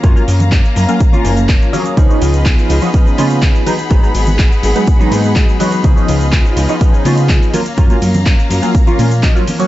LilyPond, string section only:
\new Staff \with { instrumentName = "String section" } { \time 4/4 \key des \mixolydian \tempo 4 = 124 << { bes''1 | ces'''1~ | ces'''1~ | ces'''2.~ ces'''8 bes''8~ |
bes''1 | } \\ { f''1 | <f' ees''>2.~ <f' ees''>8 <aes' ges''>8~ | <aes' ges''>1 | <f' ees''>2.~ <f' ees''>8 f''8~ |
f''1 | } >> }